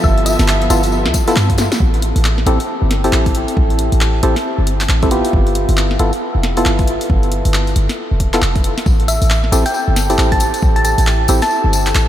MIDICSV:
0, 0, Header, 1, 7, 480
1, 0, Start_track
1, 0, Key_signature, 0, "minor"
1, 0, Tempo, 441176
1, 41, Time_signature, 4, 2, 24, 8
1, 13146, End_track
2, 0, Start_track
2, 0, Title_t, "Synth pluck"
2, 0, Program_c, 0, 84
2, 41, Note_on_c, 0, 76, 95
2, 216, Note_off_c, 0, 76, 0
2, 282, Note_on_c, 0, 76, 96
2, 762, Note_off_c, 0, 76, 0
2, 9881, Note_on_c, 0, 76, 88
2, 10056, Note_off_c, 0, 76, 0
2, 10509, Note_on_c, 0, 79, 94
2, 10568, Note_off_c, 0, 79, 0
2, 10600, Note_on_c, 0, 79, 73
2, 10695, Note_off_c, 0, 79, 0
2, 11229, Note_on_c, 0, 81, 89
2, 11365, Note_off_c, 0, 81, 0
2, 11707, Note_on_c, 0, 81, 91
2, 11782, Note_off_c, 0, 81, 0
2, 11803, Note_on_c, 0, 81, 90
2, 11977, Note_off_c, 0, 81, 0
2, 12430, Note_on_c, 0, 81, 94
2, 13091, Note_off_c, 0, 81, 0
2, 13146, End_track
3, 0, Start_track
3, 0, Title_t, "Analog synth pad"
3, 0, Program_c, 1, 89
3, 0, Note_on_c, 1, 67, 88
3, 0, Note_on_c, 1, 76, 86
3, 1973, Note_off_c, 1, 67, 0
3, 1973, Note_off_c, 1, 76, 0
3, 9640, Note_on_c, 1, 81, 86
3, 9641, Note_on_c, 1, 69, 85
3, 13146, Note_off_c, 1, 69, 0
3, 13146, Note_off_c, 1, 81, 0
3, 13146, End_track
4, 0, Start_track
4, 0, Title_t, "String section"
4, 0, Program_c, 2, 48
4, 0, Note_on_c, 2, 53, 92
4, 0, Note_on_c, 2, 59, 86
4, 0, Note_on_c, 2, 76, 91
4, 0, Note_on_c, 2, 81, 81
4, 1961, Note_off_c, 2, 76, 0
4, 1961, Note_off_c, 2, 81, 0
4, 1963, Note_off_c, 2, 53, 0
4, 1963, Note_off_c, 2, 59, 0
4, 13146, End_track
5, 0, Start_track
5, 0, Title_t, "Synth stab"
5, 0, Program_c, 3, 62
5, 0, Note_on_c, 3, 59, 88
5, 0, Note_on_c, 3, 64, 80
5, 0, Note_on_c, 3, 65, 80
5, 0, Note_on_c, 3, 69, 97
5, 739, Note_off_c, 3, 59, 0
5, 739, Note_off_c, 3, 64, 0
5, 739, Note_off_c, 3, 65, 0
5, 739, Note_off_c, 3, 69, 0
5, 762, Note_on_c, 3, 59, 95
5, 762, Note_on_c, 3, 64, 88
5, 762, Note_on_c, 3, 65, 88
5, 762, Note_on_c, 3, 69, 107
5, 894, Note_off_c, 3, 59, 0
5, 894, Note_off_c, 3, 64, 0
5, 894, Note_off_c, 3, 65, 0
5, 894, Note_off_c, 3, 69, 0
5, 1388, Note_on_c, 3, 59, 100
5, 1388, Note_on_c, 3, 64, 92
5, 1388, Note_on_c, 3, 65, 90
5, 1388, Note_on_c, 3, 69, 108
5, 1472, Note_off_c, 3, 59, 0
5, 1472, Note_off_c, 3, 64, 0
5, 1472, Note_off_c, 3, 65, 0
5, 1472, Note_off_c, 3, 69, 0
5, 2682, Note_on_c, 3, 67, 69
5, 2682, Note_on_c, 3, 69, 86
5, 2683, Note_on_c, 3, 60, 79
5, 2683, Note_on_c, 3, 64, 75
5, 2814, Note_off_c, 3, 67, 0
5, 2814, Note_off_c, 3, 69, 0
5, 2815, Note_off_c, 3, 60, 0
5, 2815, Note_off_c, 3, 64, 0
5, 3310, Note_on_c, 3, 60, 84
5, 3310, Note_on_c, 3, 64, 77
5, 3310, Note_on_c, 3, 67, 77
5, 3310, Note_on_c, 3, 69, 91
5, 4580, Note_off_c, 3, 60, 0
5, 4580, Note_off_c, 3, 64, 0
5, 4580, Note_off_c, 3, 67, 0
5, 4580, Note_off_c, 3, 69, 0
5, 4603, Note_on_c, 3, 60, 93
5, 4603, Note_on_c, 3, 64, 85
5, 4603, Note_on_c, 3, 67, 83
5, 4603, Note_on_c, 3, 69, 106
5, 4735, Note_off_c, 3, 60, 0
5, 4735, Note_off_c, 3, 64, 0
5, 4735, Note_off_c, 3, 67, 0
5, 4735, Note_off_c, 3, 69, 0
5, 5470, Note_on_c, 3, 60, 98
5, 5470, Note_on_c, 3, 64, 89
5, 5470, Note_on_c, 3, 67, 86
5, 5470, Note_on_c, 3, 69, 105
5, 5548, Note_off_c, 3, 60, 0
5, 5548, Note_off_c, 3, 67, 0
5, 5548, Note_off_c, 3, 69, 0
5, 5549, Note_off_c, 3, 64, 0
5, 5562, Note_on_c, 3, 59, 88
5, 5562, Note_on_c, 3, 64, 80
5, 5562, Note_on_c, 3, 65, 78
5, 5563, Note_on_c, 3, 67, 96
5, 6500, Note_off_c, 3, 59, 0
5, 6500, Note_off_c, 3, 64, 0
5, 6500, Note_off_c, 3, 65, 0
5, 6500, Note_off_c, 3, 67, 0
5, 6522, Note_on_c, 3, 59, 80
5, 6522, Note_on_c, 3, 64, 73
5, 6522, Note_on_c, 3, 65, 69
5, 6522, Note_on_c, 3, 69, 86
5, 6654, Note_off_c, 3, 64, 0
5, 6654, Note_off_c, 3, 65, 0
5, 6655, Note_off_c, 3, 59, 0
5, 6655, Note_off_c, 3, 69, 0
5, 7149, Note_on_c, 3, 65, 76
5, 7150, Note_on_c, 3, 59, 84
5, 7150, Note_on_c, 3, 64, 77
5, 7150, Note_on_c, 3, 69, 94
5, 8420, Note_off_c, 3, 59, 0
5, 8420, Note_off_c, 3, 64, 0
5, 8420, Note_off_c, 3, 65, 0
5, 8420, Note_off_c, 3, 69, 0
5, 9069, Note_on_c, 3, 59, 95
5, 9069, Note_on_c, 3, 64, 88
5, 9069, Note_on_c, 3, 65, 90
5, 9069, Note_on_c, 3, 69, 106
5, 9152, Note_off_c, 3, 59, 0
5, 9153, Note_off_c, 3, 64, 0
5, 9153, Note_off_c, 3, 65, 0
5, 9153, Note_off_c, 3, 69, 0
5, 10360, Note_on_c, 3, 60, 79
5, 10360, Note_on_c, 3, 64, 72
5, 10361, Note_on_c, 3, 67, 72
5, 10361, Note_on_c, 3, 69, 88
5, 10494, Note_off_c, 3, 60, 0
5, 10494, Note_off_c, 3, 64, 0
5, 10494, Note_off_c, 3, 67, 0
5, 10494, Note_off_c, 3, 69, 0
5, 10987, Note_on_c, 3, 60, 83
5, 10987, Note_on_c, 3, 64, 76
5, 10987, Note_on_c, 3, 67, 79
5, 10987, Note_on_c, 3, 69, 95
5, 12258, Note_off_c, 3, 60, 0
5, 12258, Note_off_c, 3, 64, 0
5, 12259, Note_off_c, 3, 67, 0
5, 12259, Note_off_c, 3, 69, 0
5, 12281, Note_on_c, 3, 60, 97
5, 12281, Note_on_c, 3, 64, 87
5, 12281, Note_on_c, 3, 67, 87
5, 12281, Note_on_c, 3, 69, 101
5, 12414, Note_off_c, 3, 60, 0
5, 12414, Note_off_c, 3, 64, 0
5, 12414, Note_off_c, 3, 67, 0
5, 12414, Note_off_c, 3, 69, 0
5, 13146, End_track
6, 0, Start_track
6, 0, Title_t, "808-style bass"
6, 0, Program_c, 4, 38
6, 42, Note_on_c, 4, 31, 100
6, 396, Note_off_c, 4, 31, 0
6, 428, Note_on_c, 4, 31, 104
6, 740, Note_off_c, 4, 31, 0
6, 761, Note_on_c, 4, 31, 100
6, 1148, Note_on_c, 4, 38, 80
6, 1165, Note_off_c, 4, 31, 0
6, 1228, Note_off_c, 4, 38, 0
6, 1481, Note_on_c, 4, 43, 85
6, 1836, Note_off_c, 4, 43, 0
6, 1961, Note_on_c, 4, 33, 97
6, 2316, Note_off_c, 4, 33, 0
6, 2348, Note_on_c, 4, 33, 101
6, 2661, Note_off_c, 4, 33, 0
6, 2679, Note_on_c, 4, 33, 98
6, 2807, Note_off_c, 4, 33, 0
6, 3067, Note_on_c, 4, 31, 96
6, 3380, Note_off_c, 4, 31, 0
6, 3400, Note_on_c, 4, 33, 80
6, 3755, Note_off_c, 4, 33, 0
6, 3883, Note_on_c, 4, 33, 97
6, 4236, Note_off_c, 4, 33, 0
6, 4268, Note_on_c, 4, 33, 100
6, 4581, Note_off_c, 4, 33, 0
6, 4602, Note_on_c, 4, 33, 97
6, 4729, Note_off_c, 4, 33, 0
6, 4988, Note_on_c, 4, 31, 91
6, 5300, Note_off_c, 4, 31, 0
6, 5321, Note_on_c, 4, 33, 81
6, 5675, Note_off_c, 4, 33, 0
6, 5803, Note_on_c, 4, 31, 93
6, 6157, Note_off_c, 4, 31, 0
6, 6188, Note_on_c, 4, 31, 103
6, 6501, Note_off_c, 4, 31, 0
6, 6523, Note_on_c, 4, 31, 101
6, 6649, Note_off_c, 4, 31, 0
6, 6908, Note_on_c, 4, 29, 94
6, 7220, Note_off_c, 4, 29, 0
6, 7242, Note_on_c, 4, 31, 78
6, 7596, Note_off_c, 4, 31, 0
6, 7722, Note_on_c, 4, 31, 97
6, 8076, Note_off_c, 4, 31, 0
6, 8109, Note_on_c, 4, 31, 98
6, 8421, Note_off_c, 4, 31, 0
6, 8442, Note_on_c, 4, 31, 96
6, 8569, Note_off_c, 4, 31, 0
6, 8829, Note_on_c, 4, 29, 93
6, 9141, Note_off_c, 4, 29, 0
6, 9162, Note_on_c, 4, 29, 95
6, 9516, Note_off_c, 4, 29, 0
6, 9642, Note_on_c, 4, 33, 97
6, 9996, Note_off_c, 4, 33, 0
6, 10028, Note_on_c, 4, 33, 103
6, 10340, Note_off_c, 4, 33, 0
6, 10359, Note_on_c, 4, 33, 94
6, 10487, Note_off_c, 4, 33, 0
6, 10747, Note_on_c, 4, 31, 92
6, 11060, Note_off_c, 4, 31, 0
6, 11080, Note_on_c, 4, 33, 80
6, 11435, Note_off_c, 4, 33, 0
6, 11561, Note_on_c, 4, 33, 98
6, 11916, Note_off_c, 4, 33, 0
6, 11946, Note_on_c, 4, 33, 98
6, 12260, Note_off_c, 4, 33, 0
6, 12280, Note_on_c, 4, 33, 99
6, 12407, Note_off_c, 4, 33, 0
6, 12668, Note_on_c, 4, 31, 94
6, 12981, Note_off_c, 4, 31, 0
6, 13001, Note_on_c, 4, 33, 81
6, 13146, Note_off_c, 4, 33, 0
6, 13146, End_track
7, 0, Start_track
7, 0, Title_t, "Drums"
7, 41, Note_on_c, 9, 54, 38
7, 42, Note_on_c, 9, 36, 118
7, 150, Note_off_c, 9, 54, 0
7, 151, Note_off_c, 9, 36, 0
7, 191, Note_on_c, 9, 42, 39
7, 281, Note_on_c, 9, 54, 92
7, 283, Note_off_c, 9, 42, 0
7, 283, Note_on_c, 9, 42, 110
7, 390, Note_off_c, 9, 54, 0
7, 391, Note_off_c, 9, 42, 0
7, 423, Note_on_c, 9, 54, 49
7, 430, Note_on_c, 9, 40, 70
7, 430, Note_on_c, 9, 42, 72
7, 518, Note_off_c, 9, 54, 0
7, 518, Note_on_c, 9, 54, 42
7, 522, Note_on_c, 9, 39, 119
7, 538, Note_off_c, 9, 40, 0
7, 538, Note_off_c, 9, 42, 0
7, 627, Note_off_c, 9, 54, 0
7, 631, Note_off_c, 9, 39, 0
7, 670, Note_on_c, 9, 42, 39
7, 763, Note_off_c, 9, 42, 0
7, 763, Note_on_c, 9, 42, 112
7, 764, Note_on_c, 9, 54, 92
7, 872, Note_off_c, 9, 42, 0
7, 873, Note_off_c, 9, 54, 0
7, 902, Note_on_c, 9, 54, 52
7, 909, Note_on_c, 9, 42, 68
7, 1002, Note_off_c, 9, 54, 0
7, 1002, Note_on_c, 9, 54, 36
7, 1018, Note_off_c, 9, 42, 0
7, 1110, Note_off_c, 9, 54, 0
7, 1149, Note_on_c, 9, 40, 69
7, 1239, Note_on_c, 9, 54, 98
7, 1242, Note_on_c, 9, 36, 101
7, 1242, Note_on_c, 9, 42, 111
7, 1257, Note_off_c, 9, 40, 0
7, 1348, Note_off_c, 9, 54, 0
7, 1351, Note_off_c, 9, 36, 0
7, 1351, Note_off_c, 9, 42, 0
7, 1386, Note_on_c, 9, 54, 50
7, 1389, Note_on_c, 9, 42, 70
7, 1481, Note_on_c, 9, 39, 115
7, 1482, Note_off_c, 9, 54, 0
7, 1482, Note_on_c, 9, 54, 37
7, 1497, Note_off_c, 9, 42, 0
7, 1590, Note_off_c, 9, 39, 0
7, 1590, Note_off_c, 9, 54, 0
7, 1629, Note_on_c, 9, 36, 60
7, 1629, Note_on_c, 9, 42, 57
7, 1716, Note_on_c, 9, 54, 84
7, 1722, Note_off_c, 9, 42, 0
7, 1722, Note_on_c, 9, 38, 87
7, 1722, Note_on_c, 9, 42, 113
7, 1738, Note_off_c, 9, 36, 0
7, 1825, Note_off_c, 9, 54, 0
7, 1831, Note_off_c, 9, 38, 0
7, 1831, Note_off_c, 9, 42, 0
7, 1869, Note_on_c, 9, 38, 106
7, 1869, Note_on_c, 9, 42, 72
7, 1872, Note_on_c, 9, 54, 50
7, 1962, Note_on_c, 9, 36, 112
7, 1977, Note_off_c, 9, 38, 0
7, 1977, Note_off_c, 9, 42, 0
7, 1981, Note_off_c, 9, 54, 0
7, 2071, Note_off_c, 9, 36, 0
7, 2110, Note_on_c, 9, 42, 34
7, 2202, Note_off_c, 9, 42, 0
7, 2202, Note_on_c, 9, 42, 106
7, 2311, Note_off_c, 9, 42, 0
7, 2349, Note_on_c, 9, 42, 65
7, 2442, Note_on_c, 9, 39, 115
7, 2458, Note_off_c, 9, 42, 0
7, 2551, Note_off_c, 9, 39, 0
7, 2590, Note_on_c, 9, 40, 32
7, 2682, Note_on_c, 9, 42, 107
7, 2699, Note_off_c, 9, 40, 0
7, 2791, Note_off_c, 9, 42, 0
7, 2829, Note_on_c, 9, 42, 62
7, 2938, Note_off_c, 9, 42, 0
7, 3163, Note_on_c, 9, 40, 65
7, 3163, Note_on_c, 9, 42, 105
7, 3272, Note_off_c, 9, 40, 0
7, 3272, Note_off_c, 9, 42, 0
7, 3310, Note_on_c, 9, 42, 62
7, 3403, Note_on_c, 9, 39, 117
7, 3419, Note_off_c, 9, 42, 0
7, 3511, Note_off_c, 9, 39, 0
7, 3549, Note_on_c, 9, 36, 100
7, 3549, Note_on_c, 9, 42, 52
7, 3642, Note_off_c, 9, 42, 0
7, 3642, Note_on_c, 9, 42, 107
7, 3658, Note_off_c, 9, 36, 0
7, 3751, Note_off_c, 9, 42, 0
7, 3789, Note_on_c, 9, 42, 62
7, 3883, Note_on_c, 9, 36, 119
7, 3898, Note_off_c, 9, 42, 0
7, 3991, Note_off_c, 9, 36, 0
7, 4029, Note_on_c, 9, 42, 34
7, 4121, Note_off_c, 9, 42, 0
7, 4121, Note_on_c, 9, 42, 103
7, 4229, Note_off_c, 9, 42, 0
7, 4268, Note_on_c, 9, 42, 60
7, 4361, Note_on_c, 9, 39, 119
7, 4377, Note_off_c, 9, 42, 0
7, 4470, Note_off_c, 9, 39, 0
7, 4601, Note_on_c, 9, 42, 101
7, 4710, Note_off_c, 9, 42, 0
7, 4748, Note_on_c, 9, 40, 53
7, 4748, Note_on_c, 9, 42, 60
7, 4857, Note_off_c, 9, 40, 0
7, 4857, Note_off_c, 9, 42, 0
7, 5080, Note_on_c, 9, 42, 98
7, 5189, Note_off_c, 9, 42, 0
7, 5228, Note_on_c, 9, 39, 63
7, 5228, Note_on_c, 9, 42, 65
7, 5321, Note_off_c, 9, 39, 0
7, 5321, Note_on_c, 9, 39, 121
7, 5337, Note_off_c, 9, 42, 0
7, 5430, Note_off_c, 9, 39, 0
7, 5469, Note_on_c, 9, 42, 52
7, 5470, Note_on_c, 9, 36, 101
7, 5561, Note_off_c, 9, 42, 0
7, 5561, Note_on_c, 9, 42, 102
7, 5579, Note_off_c, 9, 36, 0
7, 5669, Note_off_c, 9, 42, 0
7, 5708, Note_on_c, 9, 42, 62
7, 5803, Note_on_c, 9, 36, 125
7, 5817, Note_off_c, 9, 42, 0
7, 5911, Note_off_c, 9, 36, 0
7, 5948, Note_on_c, 9, 42, 34
7, 6041, Note_off_c, 9, 42, 0
7, 6041, Note_on_c, 9, 42, 99
7, 6150, Note_off_c, 9, 42, 0
7, 6188, Note_on_c, 9, 42, 59
7, 6281, Note_on_c, 9, 39, 117
7, 6297, Note_off_c, 9, 42, 0
7, 6389, Note_off_c, 9, 39, 0
7, 6429, Note_on_c, 9, 40, 32
7, 6521, Note_on_c, 9, 42, 99
7, 6537, Note_off_c, 9, 40, 0
7, 6630, Note_off_c, 9, 42, 0
7, 6668, Note_on_c, 9, 42, 60
7, 6777, Note_off_c, 9, 42, 0
7, 7001, Note_on_c, 9, 40, 66
7, 7001, Note_on_c, 9, 42, 99
7, 7109, Note_off_c, 9, 40, 0
7, 7109, Note_off_c, 9, 42, 0
7, 7147, Note_on_c, 9, 42, 62
7, 7240, Note_on_c, 9, 39, 124
7, 7256, Note_off_c, 9, 42, 0
7, 7349, Note_off_c, 9, 39, 0
7, 7387, Note_on_c, 9, 42, 49
7, 7390, Note_on_c, 9, 36, 105
7, 7480, Note_off_c, 9, 42, 0
7, 7480, Note_on_c, 9, 42, 99
7, 7498, Note_off_c, 9, 36, 0
7, 7589, Note_off_c, 9, 42, 0
7, 7627, Note_on_c, 9, 42, 60
7, 7722, Note_on_c, 9, 36, 119
7, 7736, Note_off_c, 9, 42, 0
7, 7831, Note_off_c, 9, 36, 0
7, 7867, Note_on_c, 9, 42, 34
7, 7960, Note_off_c, 9, 42, 0
7, 7960, Note_on_c, 9, 42, 96
7, 8069, Note_off_c, 9, 42, 0
7, 8108, Note_on_c, 9, 42, 63
7, 8200, Note_on_c, 9, 39, 118
7, 8216, Note_off_c, 9, 42, 0
7, 8309, Note_off_c, 9, 39, 0
7, 8348, Note_on_c, 9, 42, 35
7, 8442, Note_off_c, 9, 42, 0
7, 8442, Note_on_c, 9, 42, 94
7, 8550, Note_off_c, 9, 42, 0
7, 8589, Note_on_c, 9, 40, 49
7, 8589, Note_on_c, 9, 42, 61
7, 8698, Note_off_c, 9, 40, 0
7, 8698, Note_off_c, 9, 42, 0
7, 8922, Note_on_c, 9, 36, 60
7, 8922, Note_on_c, 9, 42, 97
7, 9031, Note_off_c, 9, 36, 0
7, 9031, Note_off_c, 9, 42, 0
7, 9069, Note_on_c, 9, 39, 62
7, 9069, Note_on_c, 9, 42, 61
7, 9162, Note_off_c, 9, 39, 0
7, 9162, Note_on_c, 9, 39, 122
7, 9178, Note_off_c, 9, 42, 0
7, 9271, Note_off_c, 9, 39, 0
7, 9309, Note_on_c, 9, 36, 102
7, 9309, Note_on_c, 9, 42, 51
7, 9402, Note_off_c, 9, 42, 0
7, 9402, Note_on_c, 9, 42, 99
7, 9418, Note_off_c, 9, 36, 0
7, 9511, Note_off_c, 9, 42, 0
7, 9549, Note_on_c, 9, 40, 51
7, 9549, Note_on_c, 9, 42, 64
7, 9640, Note_on_c, 9, 54, 40
7, 9642, Note_on_c, 9, 36, 121
7, 9657, Note_off_c, 9, 40, 0
7, 9657, Note_off_c, 9, 42, 0
7, 9749, Note_off_c, 9, 54, 0
7, 9751, Note_off_c, 9, 36, 0
7, 9789, Note_on_c, 9, 42, 36
7, 9882, Note_off_c, 9, 42, 0
7, 9882, Note_on_c, 9, 42, 94
7, 9882, Note_on_c, 9, 54, 85
7, 9990, Note_off_c, 9, 42, 0
7, 9991, Note_off_c, 9, 54, 0
7, 10028, Note_on_c, 9, 42, 65
7, 10032, Note_on_c, 9, 54, 48
7, 10119, Note_off_c, 9, 54, 0
7, 10119, Note_on_c, 9, 54, 39
7, 10121, Note_on_c, 9, 39, 116
7, 10137, Note_off_c, 9, 42, 0
7, 10228, Note_off_c, 9, 54, 0
7, 10230, Note_off_c, 9, 39, 0
7, 10268, Note_on_c, 9, 40, 28
7, 10362, Note_on_c, 9, 42, 98
7, 10363, Note_on_c, 9, 54, 99
7, 10377, Note_off_c, 9, 40, 0
7, 10471, Note_off_c, 9, 42, 0
7, 10472, Note_off_c, 9, 54, 0
7, 10506, Note_on_c, 9, 54, 54
7, 10508, Note_on_c, 9, 42, 65
7, 10600, Note_off_c, 9, 54, 0
7, 10600, Note_on_c, 9, 54, 40
7, 10616, Note_off_c, 9, 42, 0
7, 10709, Note_off_c, 9, 54, 0
7, 10840, Note_on_c, 9, 54, 93
7, 10841, Note_on_c, 9, 40, 63
7, 10841, Note_on_c, 9, 42, 98
7, 10949, Note_off_c, 9, 54, 0
7, 10950, Note_off_c, 9, 40, 0
7, 10950, Note_off_c, 9, 42, 0
7, 10984, Note_on_c, 9, 54, 51
7, 10988, Note_on_c, 9, 42, 63
7, 11080, Note_on_c, 9, 39, 117
7, 11090, Note_off_c, 9, 54, 0
7, 11090, Note_on_c, 9, 54, 43
7, 11097, Note_off_c, 9, 42, 0
7, 11189, Note_off_c, 9, 39, 0
7, 11199, Note_off_c, 9, 54, 0
7, 11228, Note_on_c, 9, 36, 100
7, 11228, Note_on_c, 9, 42, 52
7, 11315, Note_on_c, 9, 54, 96
7, 11321, Note_off_c, 9, 42, 0
7, 11321, Note_on_c, 9, 42, 99
7, 11337, Note_off_c, 9, 36, 0
7, 11423, Note_off_c, 9, 54, 0
7, 11429, Note_off_c, 9, 42, 0
7, 11467, Note_on_c, 9, 42, 67
7, 11468, Note_on_c, 9, 54, 48
7, 11558, Note_off_c, 9, 54, 0
7, 11558, Note_on_c, 9, 54, 39
7, 11561, Note_on_c, 9, 36, 113
7, 11575, Note_off_c, 9, 42, 0
7, 11667, Note_off_c, 9, 54, 0
7, 11670, Note_off_c, 9, 36, 0
7, 11709, Note_on_c, 9, 42, 37
7, 11800, Note_on_c, 9, 54, 92
7, 11801, Note_off_c, 9, 42, 0
7, 11801, Note_on_c, 9, 42, 101
7, 11909, Note_off_c, 9, 54, 0
7, 11910, Note_off_c, 9, 42, 0
7, 11949, Note_on_c, 9, 42, 69
7, 11949, Note_on_c, 9, 54, 48
7, 12038, Note_off_c, 9, 54, 0
7, 12038, Note_on_c, 9, 54, 35
7, 12042, Note_on_c, 9, 39, 113
7, 12058, Note_off_c, 9, 42, 0
7, 12147, Note_off_c, 9, 54, 0
7, 12151, Note_off_c, 9, 39, 0
7, 12273, Note_on_c, 9, 54, 87
7, 12282, Note_on_c, 9, 42, 102
7, 12382, Note_off_c, 9, 54, 0
7, 12391, Note_off_c, 9, 42, 0
7, 12422, Note_on_c, 9, 54, 49
7, 12429, Note_on_c, 9, 40, 48
7, 12429, Note_on_c, 9, 42, 66
7, 12518, Note_off_c, 9, 54, 0
7, 12518, Note_on_c, 9, 54, 36
7, 12538, Note_off_c, 9, 40, 0
7, 12538, Note_off_c, 9, 42, 0
7, 12627, Note_off_c, 9, 54, 0
7, 12763, Note_on_c, 9, 42, 102
7, 12764, Note_on_c, 9, 54, 85
7, 12871, Note_off_c, 9, 42, 0
7, 12872, Note_off_c, 9, 54, 0
7, 12901, Note_on_c, 9, 54, 50
7, 12909, Note_on_c, 9, 39, 58
7, 12909, Note_on_c, 9, 42, 69
7, 12999, Note_off_c, 9, 54, 0
7, 12999, Note_on_c, 9, 54, 36
7, 13002, Note_off_c, 9, 39, 0
7, 13002, Note_on_c, 9, 39, 115
7, 13018, Note_off_c, 9, 42, 0
7, 13108, Note_off_c, 9, 54, 0
7, 13111, Note_off_c, 9, 39, 0
7, 13146, End_track
0, 0, End_of_file